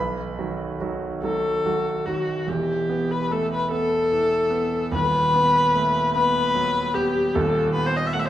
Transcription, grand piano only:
0, 0, Header, 1, 2, 480
1, 0, Start_track
1, 0, Tempo, 834492
1, 1424, Time_signature, 6, 3, 24, 8
1, 1902, Tempo, 806452
1, 4870, End_track
2, 0, Start_track
2, 0, Title_t, "Grand piano"
2, 0, Program_c, 0, 0
2, 0, Note_on_c, 0, 35, 59
2, 0, Note_on_c, 0, 71, 60
2, 0, Note_on_c, 0, 83, 81
2, 85, Control_c, 0, 64, 127
2, 217, Note_off_c, 0, 35, 0
2, 222, Note_on_c, 0, 54, 39
2, 223, Note_on_c, 0, 66, 46
2, 224, Note_on_c, 0, 51, 42
2, 441, Note_off_c, 0, 54, 0
2, 442, Note_off_c, 0, 51, 0
2, 442, Note_off_c, 0, 66, 0
2, 463, Note_on_c, 0, 51, 42
2, 464, Note_on_c, 0, 54, 48
2, 467, Note_on_c, 0, 66, 48
2, 682, Note_off_c, 0, 51, 0
2, 683, Note_off_c, 0, 54, 0
2, 683, Note_off_c, 0, 71, 0
2, 685, Note_off_c, 0, 66, 0
2, 703, Note_off_c, 0, 83, 0
2, 709, Note_on_c, 0, 51, 44
2, 711, Note_on_c, 0, 54, 49
2, 711, Note_on_c, 0, 66, 50
2, 927, Note_off_c, 0, 51, 0
2, 928, Note_off_c, 0, 54, 0
2, 928, Note_off_c, 0, 66, 0
2, 952, Note_on_c, 0, 51, 39
2, 953, Note_on_c, 0, 54, 44
2, 954, Note_on_c, 0, 66, 47
2, 1166, Note_off_c, 0, 51, 0
2, 1167, Note_off_c, 0, 54, 0
2, 1168, Note_off_c, 0, 66, 0
2, 1189, Note_on_c, 0, 51, 44
2, 1190, Note_on_c, 0, 54, 40
2, 1196, Note_on_c, 0, 66, 43
2, 1402, Note_off_c, 0, 51, 0
2, 1402, Note_off_c, 0, 54, 0
2, 1405, Note_off_c, 0, 66, 0
2, 1420, Note_on_c, 0, 28, 55
2, 1427, Note_on_c, 0, 40, 55
2, 1433, Control_c, 0, 64, 0
2, 1544, Control_c, 0, 64, 127
2, 1664, Note_on_c, 0, 59, 55
2, 1902, Note_on_c, 0, 57, 47
2, 2051, Note_off_c, 0, 59, 0
2, 2143, Note_on_c, 0, 59, 53
2, 2147, Note_off_c, 0, 57, 0
2, 2385, Note_on_c, 0, 52, 49
2, 2527, Note_off_c, 0, 59, 0
2, 2615, Note_on_c, 0, 59, 56
2, 2769, Note_off_c, 0, 52, 0
2, 2841, Note_off_c, 0, 28, 0
2, 2845, Note_off_c, 0, 40, 0
2, 2854, Note_on_c, 0, 27, 55
2, 2861, Note_on_c, 0, 39, 57
2, 2862, Note_off_c, 0, 59, 0
2, 2879, Control_c, 0, 64, 0
2, 2984, Control_c, 0, 64, 127
2, 3110, Note_on_c, 0, 59, 56
2, 3352, Note_on_c, 0, 57, 52
2, 3500, Note_off_c, 0, 59, 0
2, 3594, Note_off_c, 0, 57, 0
2, 3599, Note_on_c, 0, 59, 63
2, 3830, Note_on_c, 0, 54, 57
2, 3973, Note_off_c, 0, 59, 0
2, 4067, Note_on_c, 0, 59, 61
2, 4210, Note_off_c, 0, 54, 0
2, 4278, Note_off_c, 0, 27, 0
2, 4281, Note_off_c, 0, 39, 0
2, 4305, Note_on_c, 0, 27, 66
2, 4308, Note_off_c, 0, 59, 0
2, 4312, Note_on_c, 0, 39, 71
2, 4317, Control_c, 0, 64, 0
2, 4407, Control_c, 0, 64, 127
2, 4551, Note_on_c, 0, 59, 59
2, 4784, Note_on_c, 0, 57, 53
2, 4870, Note_off_c, 0, 27, 0
2, 4870, Note_off_c, 0, 39, 0
2, 4870, Note_off_c, 0, 57, 0
2, 4870, Note_off_c, 0, 59, 0
2, 4870, End_track
0, 0, End_of_file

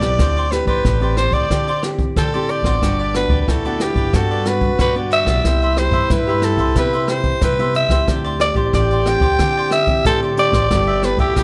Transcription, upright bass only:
0, 0, Header, 1, 2, 480
1, 0, Start_track
1, 0, Key_signature, 1, "major"
1, 0, Tempo, 657174
1, 138, Time_signature, 4, 2, 24, 8
1, 8351, End_track
2, 0, Start_track
2, 0, Title_t, "Upright bass"
2, 0, Program_c, 0, 32
2, 0, Note_on_c, 0, 35, 85
2, 109, Note_off_c, 0, 35, 0
2, 140, Note_on_c, 0, 38, 94
2, 445, Note_off_c, 0, 38, 0
2, 477, Note_on_c, 0, 33, 79
2, 588, Note_off_c, 0, 33, 0
2, 616, Note_on_c, 0, 33, 86
2, 923, Note_off_c, 0, 33, 0
2, 957, Note_on_c, 0, 38, 84
2, 1068, Note_off_c, 0, 38, 0
2, 1096, Note_on_c, 0, 50, 83
2, 1505, Note_off_c, 0, 50, 0
2, 1583, Note_on_c, 0, 50, 86
2, 1887, Note_off_c, 0, 50, 0
2, 1916, Note_on_c, 0, 33, 74
2, 2027, Note_off_c, 0, 33, 0
2, 2060, Note_on_c, 0, 31, 86
2, 2365, Note_off_c, 0, 31, 0
2, 2399, Note_on_c, 0, 38, 74
2, 2509, Note_off_c, 0, 38, 0
2, 2543, Note_on_c, 0, 38, 78
2, 2847, Note_off_c, 0, 38, 0
2, 2879, Note_on_c, 0, 31, 83
2, 2989, Note_off_c, 0, 31, 0
2, 3020, Note_on_c, 0, 43, 91
2, 3427, Note_off_c, 0, 43, 0
2, 3496, Note_on_c, 0, 43, 86
2, 3802, Note_off_c, 0, 43, 0
2, 3835, Note_on_c, 0, 35, 83
2, 3946, Note_off_c, 0, 35, 0
2, 3977, Note_on_c, 0, 36, 89
2, 4283, Note_off_c, 0, 36, 0
2, 4317, Note_on_c, 0, 43, 80
2, 4427, Note_off_c, 0, 43, 0
2, 4456, Note_on_c, 0, 43, 92
2, 4762, Note_off_c, 0, 43, 0
2, 4798, Note_on_c, 0, 36, 89
2, 4908, Note_off_c, 0, 36, 0
2, 4935, Note_on_c, 0, 48, 84
2, 5344, Note_off_c, 0, 48, 0
2, 5418, Note_on_c, 0, 48, 94
2, 5724, Note_off_c, 0, 48, 0
2, 5757, Note_on_c, 0, 37, 75
2, 5867, Note_off_c, 0, 37, 0
2, 5898, Note_on_c, 0, 38, 97
2, 6204, Note_off_c, 0, 38, 0
2, 6239, Note_on_c, 0, 33, 81
2, 6349, Note_off_c, 0, 33, 0
2, 6379, Note_on_c, 0, 33, 93
2, 6684, Note_off_c, 0, 33, 0
2, 6718, Note_on_c, 0, 38, 90
2, 6828, Note_off_c, 0, 38, 0
2, 6862, Note_on_c, 0, 50, 96
2, 7268, Note_off_c, 0, 50, 0
2, 7340, Note_on_c, 0, 50, 88
2, 7645, Note_off_c, 0, 50, 0
2, 7681, Note_on_c, 0, 33, 79
2, 7790, Note_off_c, 0, 33, 0
2, 7822, Note_on_c, 0, 31, 95
2, 8126, Note_off_c, 0, 31, 0
2, 8159, Note_on_c, 0, 38, 82
2, 8269, Note_off_c, 0, 38, 0
2, 8299, Note_on_c, 0, 38, 95
2, 8351, Note_off_c, 0, 38, 0
2, 8351, End_track
0, 0, End_of_file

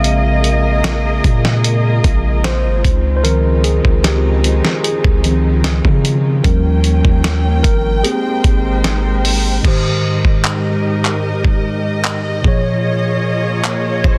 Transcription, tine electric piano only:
0, 0, Header, 1, 2, 480
1, 0, Start_track
1, 0, Key_signature, -4, "major"
1, 0, Tempo, 800000
1, 26, Time_signature, 4, 2, 24, 8
1, 8508, End_track
2, 0, Start_track
2, 0, Title_t, "Tine electric piano"
2, 0, Program_c, 0, 4
2, 0, Control_c, 0, 64, 127
2, 0, Note_on_c, 0, 49, 59
2, 0, Note_on_c, 0, 56, 52
2, 0, Note_on_c, 0, 60, 64
2, 0, Note_on_c, 0, 76, 76
2, 0, Note_on_c, 0, 77, 102
2, 106, Note_off_c, 0, 49, 0
2, 108, Note_off_c, 0, 56, 0
2, 110, Note_off_c, 0, 60, 0
2, 602, Note_off_c, 0, 77, 0
2, 1465, Note_on_c, 0, 72, 98
2, 1713, Control_c, 0, 64, 0
2, 1717, Note_off_c, 0, 76, 0
2, 1804, Control_c, 0, 64, 127
2, 1880, Note_off_c, 0, 72, 0
2, 1899, Note_on_c, 0, 72, 78
2, 1943, Note_on_c, 0, 70, 104
2, 1944, Note_off_c, 0, 72, 0
2, 1945, Note_on_c, 0, 51, 58
2, 1950, Note_on_c, 0, 53, 50
2, 1953, Note_on_c, 0, 60, 62
2, 2168, Note_off_c, 0, 70, 0
2, 2183, Note_on_c, 0, 68, 99
2, 2422, Note_on_c, 0, 67, 86
2, 2432, Note_off_c, 0, 68, 0
2, 2880, Note_off_c, 0, 67, 0
2, 2902, Note_on_c, 0, 68, 92
2, 3141, Note_off_c, 0, 51, 0
2, 3144, Note_off_c, 0, 53, 0
2, 3146, Note_off_c, 0, 60, 0
2, 3148, Note_on_c, 0, 51, 50
2, 3151, Note_on_c, 0, 53, 48
2, 3153, Note_on_c, 0, 60, 59
2, 3363, Note_off_c, 0, 51, 0
2, 3365, Note_off_c, 0, 53, 0
2, 3366, Note_off_c, 0, 60, 0
2, 3862, Note_on_c, 0, 70, 81
2, 3866, Note_on_c, 0, 53, 57
2, 3870, Note_on_c, 0, 55, 51
2, 3873, Control_c, 0, 64, 0
2, 3874, Note_on_c, 0, 61, 61
2, 3893, Note_off_c, 0, 68, 0
2, 3972, Control_c, 0, 64, 127
2, 4320, Note_off_c, 0, 70, 0
2, 4562, Note_off_c, 0, 53, 0
2, 4564, Note_off_c, 0, 55, 0
2, 4566, Note_off_c, 0, 61, 0
2, 4580, Note_on_c, 0, 70, 111
2, 4821, Note_on_c, 0, 68, 93
2, 4826, Note_on_c, 0, 67, 61
2, 4830, Note_off_c, 0, 70, 0
2, 4830, Note_on_c, 0, 58, 50
2, 4834, Control_c, 0, 64, 0
2, 4834, Note_on_c, 0, 60, 63
2, 4951, Control_c, 0, 64, 127
2, 5520, Note_off_c, 0, 68, 0
2, 5763, Note_off_c, 0, 67, 0
2, 5764, Note_off_c, 0, 58, 0
2, 5766, Note_off_c, 0, 60, 0
2, 5774, Note_on_c, 0, 44, 71
2, 5785, Note_on_c, 0, 51, 68
2, 5795, Control_c, 0, 64, 0
2, 5796, Note_on_c, 0, 67, 64
2, 5807, Note_on_c, 0, 72, 75
2, 5908, Control_c, 0, 64, 127
2, 7436, Note_off_c, 0, 44, 0
2, 7442, Note_off_c, 0, 51, 0
2, 7447, Note_off_c, 0, 67, 0
2, 7453, Note_off_c, 0, 72, 0
2, 7453, Note_on_c, 0, 46, 74
2, 7465, Note_on_c, 0, 53, 69
2, 7474, Control_c, 0, 64, 0
2, 7476, Note_on_c, 0, 68, 64
2, 7487, Note_on_c, 0, 73, 85
2, 7570, Control_c, 0, 64, 127
2, 8508, Note_off_c, 0, 46, 0
2, 8508, Note_off_c, 0, 53, 0
2, 8508, Note_off_c, 0, 68, 0
2, 8508, Note_off_c, 0, 73, 0
2, 8508, End_track
0, 0, End_of_file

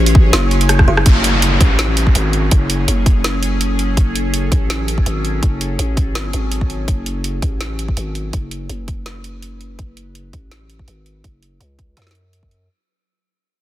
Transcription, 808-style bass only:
0, 0, Header, 1, 2, 480
1, 0, Start_track
1, 0, Key_signature, 3, "minor"
1, 0, Tempo, 363636
1, 1398, Time_signature, 4, 2, 24, 8
1, 17969, End_track
2, 0, Start_track
2, 0, Title_t, "808-style bass"
2, 0, Program_c, 0, 38
2, 0, Note_on_c, 0, 33, 94
2, 419, Note_off_c, 0, 33, 0
2, 434, Note_on_c, 0, 30, 103
2, 1138, Note_off_c, 0, 30, 0
2, 1159, Note_on_c, 0, 30, 99
2, 1381, Note_off_c, 0, 30, 0
2, 1401, Note_on_c, 0, 30, 93
2, 2102, Note_off_c, 0, 30, 0
2, 2119, Note_on_c, 0, 33, 96
2, 2821, Note_off_c, 0, 33, 0
2, 2842, Note_on_c, 0, 32, 90
2, 3302, Note_off_c, 0, 32, 0
2, 3320, Note_on_c, 0, 30, 95
2, 3781, Note_off_c, 0, 30, 0
2, 3803, Note_on_c, 0, 30, 90
2, 5223, Note_off_c, 0, 30, 0
2, 5241, Note_on_c, 0, 30, 95
2, 5942, Note_off_c, 0, 30, 0
2, 5962, Note_on_c, 0, 33, 97
2, 6662, Note_off_c, 0, 33, 0
2, 6682, Note_on_c, 0, 32, 91
2, 7142, Note_off_c, 0, 32, 0
2, 7164, Note_on_c, 0, 30, 90
2, 7623, Note_off_c, 0, 30, 0
2, 7643, Note_on_c, 0, 33, 88
2, 8343, Note_off_c, 0, 33, 0
2, 8365, Note_on_c, 0, 32, 89
2, 9064, Note_off_c, 0, 32, 0
2, 9080, Note_on_c, 0, 30, 96
2, 9781, Note_off_c, 0, 30, 0
2, 9799, Note_on_c, 0, 33, 92
2, 10501, Note_off_c, 0, 33, 0
2, 10519, Note_on_c, 0, 32, 89
2, 10981, Note_off_c, 0, 32, 0
2, 11000, Note_on_c, 0, 30, 90
2, 11461, Note_off_c, 0, 30, 0
2, 11477, Note_on_c, 0, 30, 93
2, 12900, Note_off_c, 0, 30, 0
2, 12920, Note_on_c, 0, 30, 91
2, 13621, Note_off_c, 0, 30, 0
2, 13639, Note_on_c, 0, 33, 91
2, 14341, Note_off_c, 0, 33, 0
2, 14359, Note_on_c, 0, 32, 89
2, 14821, Note_off_c, 0, 32, 0
2, 14840, Note_on_c, 0, 30, 92
2, 15301, Note_off_c, 0, 30, 0
2, 15317, Note_on_c, 0, 37, 85
2, 15780, Note_off_c, 0, 37, 0
2, 15802, Note_on_c, 0, 42, 90
2, 16742, Note_off_c, 0, 42, 0
2, 17969, End_track
0, 0, End_of_file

